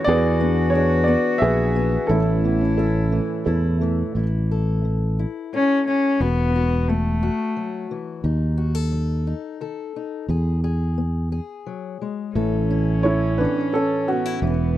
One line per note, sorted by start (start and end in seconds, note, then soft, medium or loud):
0.00 0.14 E4 medium
0.00 0.14 A4 medium
0.04 1.15 E2 loud
0.04 2.44 E3 medium
0.04 1.05 B3 medium
0.04 2.11 F#4 loud
0.04 1.42 G#4 medium
0.04 1.05 B4 medium
0.04 0.69 D5 loud
0.09 1.05 G#4 medium
0.40 1.07 B3 medium
0.40 2.17 D4 medium
0.70 1.40 G#4 medium
0.70 1.03 C#5 medium
0.75 2.06 D4 medium
1.04 1.74 B3 medium
1.04 1.75 B3 medium
1.04 1.41 D5 medium
1.38 1.96 A#1 medium
1.38 2.17 G#4 medium
1.38 2.06 G#4 medium
1.38 2.06 B4 medium
1.38 2.04 E5 medium
1.44 2.07 G#4 medium
1.75 2.17 B3 medium
1.75 2.06 B3 medium
2.07 3.19 A1 loud
2.07 4.12 A2 medium
2.07 4.16 E3 medium
2.07 3.43 C#4 medium
2.07 3.82 E4 medium
2.07 3.43 E4 medium
2.07 3.46 E4 medium
2.07 3.42 A4 medium
2.44 3.11 E3 medium
2.44 2.60 B3 medium
2.61 4.23 C#4 soft
2.78 4.13 C#4 medium
2.78 3.44 A4 medium
3.12 3.80 E3 medium
3.12 3.79 A3 medium
3.46 4.02 E2 medium
3.46 4.12 E4 medium
3.46 4.23 A4 medium
3.81 4.83 E3 medium
3.81 4.23 A3 medium
4.15 5.24 A1 medium
4.15 4.78 A2 medium
4.15 5.19 E4 soft
4.51 5.52 A4 medium
4.85 5.46 E3 soft
5.19 5.86 E4 soft
5.53 6.14 A2 soft
5.53 5.85 C#4 medium
5.53 6.17 A4 medium
5.87 6.22 C#4 medium
5.87 6.17 E4 soft
6.20 7.28 E1 medium
6.20 6.82 E3 medium
6.20 6.90 B3 medium
6.20 6.55 F#4 medium
6.56 7.22 F#4 medium
6.88 7.90 A3 medium
6.88 7.50 B3 medium
7.23 8.56 F#4 medium
7.56 7.90 F#3 medium
7.91 8.25 E3 medium
8.24 9.32 D#2 medium
8.24 8.85 D#3 medium
8.24 9.26 D#4 soft
8.57 8.75 F#4 medium
8.75 9.60 A4 soft
8.92 9.54 F#3 soft
9.27 9.95 D#4 soft
9.61 10.22 D#3 medium
9.61 10.25 A4 medium
9.96 10.26 D#4 soft
10.28 11.39 E2 medium
10.28 10.91 E3 medium
10.28 10.63 G#4 medium
10.64 11.31 G#4 medium
10.98 11.60 B3 soft
11.32 12.33 G#4 medium
11.66 12.01 F#3 soft
12.02 12.36 G#3 medium
12.35 13.45 A1 medium
12.35 14.38 A2 medium
12.35 14.41 E3 medium
12.35 14.44 C#4 medium
12.35 14.38 A4 medium
12.70 13.39 C#4 soft
12.70 14.08 E4 medium
13.03 13.37 E4 medium
13.03 13.72 A4 medium
13.03 13.40 C#5 medium
13.38 14.41 E3 medium
13.38 13.55 B3 soft
13.38 13.72 D4 medium
13.38 13.74 B4 medium
13.56 14.07 C#4 soft
13.73 14.07 C#4 soft
13.73 14.07 C#4 medium
13.73 14.49 A4 medium
13.73 14.06 A4 medium
14.08 14.78 B3 medium
14.08 14.49 C#4 medium
14.08 14.25 C#4 soft
14.08 14.78 F#4 medium
14.26 14.42 E4 soft
14.42 14.78 E1 medium
14.42 14.78 E3 medium
14.42 14.78 B3 medium
14.42 14.76 E4 medium